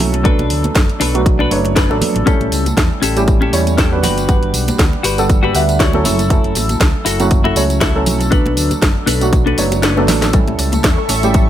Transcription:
Already playing: F#3 A3 C#4 E4 A4
0.00 B1, open hi-hat, high conga, low conga
0.13 muted clean electric guitar stroke, closed hi-hat
0.24 F#3 A3 B3 D4 A4 B4, kick, closed hi-hat
0.39 B1, closed hi-hat, muted conga
0.50 D2, open hi-hat
0.64 muted fingered electric bass stroke, closed hi-hat, muted conga, high conga
0.75 F#1, kick, snare, closed hi-hat
0.90 closed hi-hat
1.00 B1 D4 A4 B4, open hi-hat, muted conga
1.14 F#3 A3 B3 D4 F#4, closed hi-hat
1.26 kick, closed hi-hat, muted conga
1.39 D4 A4 B4, high conga
1.51 F#1 F#3 A3 B3 D4 C#5, open hi-hat
1.65 closed hi-hat, muted conga
1.75 D4 A4 B4, kick, snare, closed hi-hat
1.90 A1 F#3 A3 B3 D4 A4, muted conga
2.01 open hi-hat, high conga, low conga
2.15 A1, muted clean electric guitar stroke, closed hi-hat
2.26 G3 A3 C#4 E4 G4 A4, muted fingered electric bass stroke, kick, closed hi-hat, tambourine
2.41 A1, closed hi-hat, muted conga
2.52 C#2, open hi-hat, tambourine
2.66 closed hi-hat, tambourine, high conga
2.77 E2, kick, snare, closed hi-hat, tambourine, muted conga
3.02 A1 C#4 G4 A4, open hi-hat, tambourine, muted conga
3.16 G3 A3 C#4 E4 G4, closed hi-hat, tambourine
3.28 kick, closed hi-hat, tambourine
3.41 C#4 G4 A4, muted conga, high conga
3.52 E2 G3 A3 C#4 E4 C#5, open hi-hat, tambourine
3.67 closed hi-hat, tambourine, muted conga
3.77 C#4 G4 A4, kick, snare, closed hi-hat, tambourine
3.92 G3 B3 D4 F#4 B4
4.03 G1 F#4 G4 B4, open hi-hat, tambourine, muted conga, high conga, low conga
4.18 closed hi-hat, tambourine
4.28 G3 B3 D4 B4 F#5, kick, closed hi-hat, tambourine, muted conga
4.43 G1, closed hi-hat
4.54 B1, open hi-hat, tambourine
4.68 muted fingered electric bass stroke, closed hi-hat, tambourine, muted conga, high conga
4.79 D2, kick, snare, closed hi-hat, tambourine
4.93 muted conga
5.03 G1 F#4 G4 B4, open hi-hat, tambourine
5.18 G3 B3 D4 A4 F#5, closed hi-hat, tambourine
5.30 kick, closed hi-hat, tambourine, muted conga
5.43 F#4 G4 B4, high conga
5.55 D2 G3 B3 D4 E5 F#5, open hi-hat, tambourine, muted conga
5.69 closed hi-hat, tambourine
5.79 F#4 G4 C#5 D5, kick, snare, closed hi-hat, tambourine
5.93 F#3 A3 C#4 E4 A4, muted conga
6.04 F#1 E4 F#4 A4, open hi-hat, tambourine, high conga, low conga
6.19 closed hi-hat, tambourine, muted conga
6.29 F#3 A3 C#4 E4 A4, kick, closed hi-hat, tambourine
6.44 F#1, closed hi-hat
6.55 A1, open hi-hat, tambourine, muted conga
6.69 closed hi-hat, tambourine, high conga
6.80 C#2, kick, snare, closed hi-hat, tambourine, muted conga
7.05 F#1 E4 F#4 A4, open hi-hat, tambourine
7.20 F#3 A3 C#4 E4 F#4, closed hi-hat, tambourine, muted conga
7.31 kick, closed hi-hat, tambourine
7.44 E4 F#4 A4, muted conga, high conga
7.56 C#2 F#3 A3 C#4 E4 C#5, open hi-hat, tambourine
7.70 closed hi-hat, tambourine
7.80 E4 F#4 A4, kick, snare, closed hi-hat, tambourine, muted conga
7.95 F#3 A3 C#4 E4 A4
8.06 B1, open hi-hat, tambourine, muted conga, high conga, low conga
8.20 muted clean electric guitar stroke, closed hi-hat, tambourine
8.31 F#3 A3 B3 D4 A4 B4, kick, closed hi-hat, tambourine
8.46 B1, closed hi-hat, muted conga
8.57 D2, open hi-hat, tambourine
8.71 muted fingered electric bass stroke, closed hi-hat, tambourine, muted conga, high conga
8.82 F#1, kick, snare, closed hi-hat, tambourine
9.06 B1 D4 A4 B4, open hi-hat, tambourine, muted conga
9.21 F#3 A3 B3 D4 F#4, closed hi-hat, tambourine
9.33 kick, closed hi-hat, tambourine, muted conga
9.46 D4 A4 B4, closed hi-hat, high conga
9.58 F#1 F#3 A3 B3 D4 C#5, open hi-hat, tambourine
9.72 closed hi-hat, tambourine, muted conga
9.82 D4 A4 B4, snare, closed hi-hat, tambourine
9.97 F#3 A3 B3 D4 A4, high tom, muted conga
10.08 A1, snare, open hi-hat, tambourine, high conga, low conga
10.22 muted clean electric guitar stroke, snare, closed hi-hat, tambourine
10.33 G3 A3 C#4 E4 A4 E5 C#6, kick, closed hi-hat, tambourine
10.47 A1 A3, closed hi-hat, muted conga
10.59 C#2 C#4, open hi-hat, tambourine
10.72 A3, closed hi-hat, tambourine, high conga
10.84 E2 G3, kick, snare, closed hi-hat, tambourine, muted conga
10.98 A3
11.09 A1 C#4, open hi-hat, tambourine, muted conga
11.23 G3 A3 C#4 E4 G4, closed hi-hat, tambourine
11.34 G3, kick, closed hi-hat, tambourine

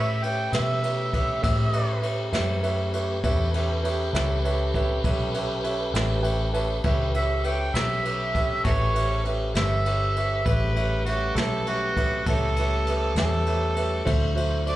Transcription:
Already playing: A2 A3 C#4 G4 B4 C#5 E5
0.23 G4 B4 C#5 E5 G5, ride
0.53 B2 G4 B4 C#5 E5, snare, ride
0.84 G4 B4 C#5 E5, ride
1.13 G4 B4 C#5 E5, kick, ride
1.42 A2 G4 B4 C#5 E5, kick, snare, ride
1.73 G4 B4 C#5 E5, ride
2.02 G4 B4 C#5 E5, ride
2.32 F#2 G4 B4 C#5 E5, snare, ride
2.63 G4 B4 C#5 E5, ride
2.94 G4 B4 C#5 E5, ride
3.23 E2 C#4 G4 A4 B4 C#5 E5, kick, ride
3.54 G4 B4 C#5 E5, ride
3.84 G4 B4 C#5 E5, ride
4.13 C#2 G4 B4 C#5 E5, snare, ride
4.44 G4 B4 C#5 E5, ride
4.74 G4 B4 C#5 E5, kick, ride
5.04 B1 G4 B4 C#5 E5, kick, ride
5.34 G4 B4 C#5 E5, ride
5.63 G4 B4 C#5 E5, ride
5.94 A1 G4 B4 C#5 E5, snare, ride
6.22 G4 B4 C#5 E5 G5, ride
6.53 G4 B4 C#5 E5 A5, ride
6.84 C#2 C#4 G4 A4 B4 C#5 E5, kick, ride
7.14 G4 B4 C#5 E5, ride
7.44 G4 B4 C#5 E5 G5, ride
7.74 B1 G4 B4 C#5 E5, snare, ride
8.05 G4 B4 C#5 E5, ride
8.35 G4 B4 C#5 E5, kick, ride
8.64 A1 F#4 G4 A4 B4 C#5 E5, kick, ride
8.94 G4 B4 C#5 E5, ride
9.25 G4 B4 C#5 E5, ride
9.54 G1 G4 B4 C#5 E5, snare, ride
9.86 G4 B4 C#5 E5, ride
10.16 G4 B4 C#5 E5, ride
10.45 A1 G3 A3 C#4 G4 B4 C#5 E5, kick, ride
10.76 G4 B4 C#5 E5, ride
11.05 F#4 G4 B4 C#5 E5, ride
11.35 B1 G4 A4 B4 C#5 E5, snare, ride
11.67 F#4 G4 B4 C#5 E5, ride
11.97 G4 B4 C#5 E5, kick, ride
12.26 C#2 G4 A4 B4 C#5 E5, kick, ride
12.56 G4 B4 C#5 E5, ride
12.87 G4 B4 C#5 E5, ride
13.16 E2 G4 A4 B4 C#5 E5, snare, ride
13.46 G4 B4 C#5 E5, ride
13.76 G4 B4 C#5 E5, ride
14.05 D2 F#3 D4 E4 F#4 A4 C5 E5, kick, ride
14.35 F#4 A4 C5 E5, ride
14.66 F#4 A4 C5 D5 E5, ride

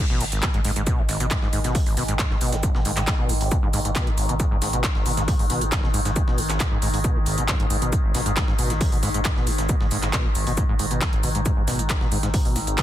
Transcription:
0.00 G#2 D#3
0.10 G#1 B2
0.20 G#1 G#2, open hi-hat, shaker
0.32 G#1, closed hi-hat
0.43 B2, kick, snare, clap, closed hi-hat, shaker
0.54 G#1 G#2, closed hi-hat
0.65 G#1 G#2, open hi-hat, shaker
0.76 G#1 G#2, closed hi-hat
0.87 B2, kick, closed hi-hat, shaker
0.98 G#1 G#2
1.09 G#1, snare, open hi-hat, shaker
1.20 G#1 B2, closed hi-hat
1.31 G#2, kick, snare, clap, closed hi-hat, shaker
1.42 G#1 G#2, snare
1.53 G#1 G#2, open hi-hat, shaker
1.64 G#1 B2, snare, closed hi-hat
1.75 G#2, kick, closed hi-hat, open hi-hat
1.86 G#1, open hi-hat
1.97 G#1 B2, snare, open hi-hat, shaker
2.08 G#1 G#2, closed hi-hat
2.19 G#2, kick, snare, clap, closed hi-hat, shaker
2.31 G#1 G#2, snare
2.41 G#1 B2, open hi-hat, shaker
2.52 G#1 G#2, snare, closed hi-hat
2.63 G#1, kick, closed hi-hat, shaker
2.75 G#1 B2, snare
2.85 G#1 G#2, open hi-hat, shaker
2.97 G#1 G#2, snare, clap, closed hi-hat
3.07 G#2, kick, snare, clap, closed hi-hat, shaker
3.19 G#1 B2
3.29 G#1 G#2, open hi-hat, shaker
3.41 G#1, closed hi-hat, open hi-hat
3.51 B2, kick, closed hi-hat, shaker
3.63 G#1 G#2
3.73 G#1 G#2, open hi-hat, shaker
3.85 G#1 G#2, closed hi-hat
3.96 B2, kick, snare, clap, closed hi-hat, shaker
4.07 G#1 G#2, closed hi-hat
4.18 G#1, open hi-hat, shaker
4.29 G#1 B2, closed hi-hat
4.40 G#2, kick, closed hi-hat, shaker
4.51 G#1 G#2
4.62 G#1 G#2, snare, open hi-hat, shaker
4.73 G#1 B2, closed hi-hat
4.84 G#2, kick, snare, clap, closed hi-hat, shaker
4.95 G#1, snare
5.06 G#1 B2, open hi-hat, shaker
5.17 G#1 G#2, snare, closed hi-hat
5.28 G#2, kick, closed hi-hat, open hi-hat
5.39 G#1 G#2, open hi-hat
5.50 G#1 B2, snare, open hi-hat, shaker
5.61 G#1 G#2, closed hi-hat
5.72 G#1, kick, snare, clap, closed hi-hat, shaker
5.83 G#1 B2, snare
5.94 G#1 G#2, open hi-hat, shaker
6.05 G#1 G#2, snare, closed hi-hat
6.16 G#2, kick, closed hi-hat, shaker
6.27 G#1 B2, snare
6.38 G#1 G#2, open hi-hat, shaker
6.50 G#1, snare, clap, closed hi-hat
6.60 B2, kick, snare, clap, closed hi-hat, shaker
6.72 G#1 G#2
6.82 G#1 G#2, open hi-hat, shaker
6.94 G#1 G#2, closed hi-hat, open hi-hat
7.04 B2, kick, closed hi-hat, shaker
7.16 G#1 G#2
7.26 G#1, open hi-hat, shaker
7.38 G#1 B2, closed hi-hat
7.48 G#2, kick, snare, clap, closed hi-hat, shaker
7.60 G#1 G#2, closed hi-hat
7.70 G#1 G#2, open hi-hat, shaker
7.82 G#1 B2, closed hi-hat
7.92 G#2, kick, closed hi-hat, shaker
8.04 G#1
8.14 G#1 B2, snare, open hi-hat, shaker
8.26 G#1 G#2, closed hi-hat
8.37 G#2, kick, snare, clap, closed hi-hat, shaker
8.48 G#1 G#2, snare
8.59 G#1 B2, open hi-hat, shaker
8.70 G#1 G#2, snare, closed hi-hat
8.81 G#1, kick, closed hi-hat, open hi-hat
8.92 G#1 B2, open hi-hat
9.03 G#1 G#2, snare, open hi-hat, shaker
9.14 G#1 G#2, closed hi-hat
9.25 G#2, kick, snare, clap, closed hi-hat, shaker
9.36 G#1 B2, snare
9.47 G#1 G#2, open hi-hat, shaker
9.58 G#1, snare, closed hi-hat
9.69 B2, kick, closed hi-hat, shaker
9.81 G#1 G#2, snare
9.91 G#1 G#2, open hi-hat, shaker
10.03 G#1 G#2, snare, clap, closed hi-hat
10.13 B2, kick, snare, clap, closed hi-hat, shaker
10.25 G#1 G#2
10.35 G#1, open hi-hat, shaker
10.47 G#1 B2, closed hi-hat, open hi-hat
10.57 G#2, kick, closed hi-hat, shaker
10.69 G#1 G#2
10.79 G#1 G#2, open hi-hat, shaker
10.91 G#1 B2, closed hi-hat
11.01 G#2, kick, snare, clap, closed hi-hat, shaker
11.13 G#1, closed hi-hat
11.23 G#1 B2, open hi-hat, shaker
11.35 G#1 G#2, closed hi-hat
11.46 G#2, kick, closed hi-hat, shaker
11.57 G#1 G#2
11.67 G#1 B2, snare, open hi-hat, shaker
11.79 G#1 G#2, closed hi-hat
11.90 G#1, kick, snare, clap, closed hi-hat, shaker
12.01 G#1 B2, snare
12.12 G#1 G#2, open hi-hat, shaker
12.23 G#1 G#2, snare, closed hi-hat
12.34 G#2, kick, closed hi-hat, open hi-hat
12.45 G#1 B2, open hi-hat
12.56 G#1 G#2, snare, open hi-hat, shaker
12.67 G#1, closed hi-hat
12.78 B2, kick, snare, clap, closed hi-hat, shaker

